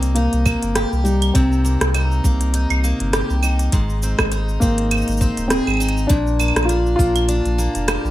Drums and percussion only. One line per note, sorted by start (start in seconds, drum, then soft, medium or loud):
0.03 closed hi-hat soft
0.03 shaker soft
0.16 closed hi-hat medium
0.16 shaker soft
0.33 closed hi-hat soft
0.33 shaker soft
0.46 kick loud
0.46 claves medium
0.46 shaker medium
0.63 closed hi-hat soft
0.63 shaker soft
0.75 cross-stick medium
0.75 closed hi-hat medium
0.75 shaker soft
0.93 shaker soft
1.06 shaker medium
1.22 closed hi-hat soft
1.22 claves medium
1.22 shaker soft
1.35 kick loud
1.35 closed hi-hat medium
1.35 shaker soft
1.52 shaker soft
1.65 shaker medium
1.81 cross-stick medium
1.81 closed hi-hat soft
1.81 shaker soft
1.94 closed hi-hat medium
1.94 claves medium
1.94 shaker soft
2.12 shaker soft
2.24 kick loud
2.24 shaker medium
2.41 closed hi-hat soft
2.41 shaker soft
2.54 closed hi-hat medium
2.54 shaker soft
2.70 closed hi-hat soft
2.70 claves medium
2.70 shaker soft
2.84 shaker medium
3.00 closed hi-hat soft
3.13 cross-stick medium
3.13 closed hi-hat medium
3.13 shaker soft
3.30 shaker soft
3.43 claves medium
3.43 shaker medium
3.59 closed hi-hat soft
3.59 shaker soft
3.72 kick loud
3.72 closed hi-hat medium
3.72 shaker soft
3.90 shaker soft
4.03 shaker medium
4.19 kick medium
4.19 cross-stick medium
4.19 claves medium
4.19 shaker soft
4.32 closed hi-hat soft
4.32 shaker soft
4.49 shaker soft
4.62 kick loud
4.62 shaker medium
4.78 closed hi-hat soft
4.91 closed hi-hat medium
4.91 claves medium
4.91 shaker soft
4.97 shaker soft
5.02 shaker soft
5.08 closed hi-hat soft
5.08 shaker soft
5.12 shaker soft
5.17 kick loud
5.17 shaker soft
5.21 shaker medium
5.37 closed hi-hat soft
5.37 shaker soft
5.50 cross-stick medium
5.50 closed hi-hat soft
5.50 shaker soft
5.67 claves medium
5.67 shaker soft
5.70 claves medium
5.74 claves soft
5.77 claves soft
5.80 claves soft
5.80 shaker medium
5.84 claves soft
5.89 closed hi-hat soft
5.89 claves soft
5.93 claves soft
5.97 shaker soft
6.10 kick loud
6.10 closed hi-hat soft
6.10 shaker soft
6.27 shaker soft
6.40 claves medium
6.40 shaker medium
6.48 claves medium
6.56 cross-stick medium
6.56 closed hi-hat soft
6.56 claves soft
6.56 shaker soft
6.63 claves soft
6.69 closed hi-hat soft
6.69 shaker soft
6.86 shaker soft
6.99 kick loud
6.99 shaker medium
7.16 closed hi-hat soft
7.16 claves medium
7.16 shaker soft
7.29 closed hi-hat medium
7.29 shaker soft
7.45 closed hi-hat soft
7.45 shaker soft
7.59 shaker medium
7.75 closed hi-hat soft
7.75 shaker soft
7.88 cross-stick medium
7.88 closed hi-hat soft
7.88 claves medium
7.88 shaker soft
8.05 shaker soft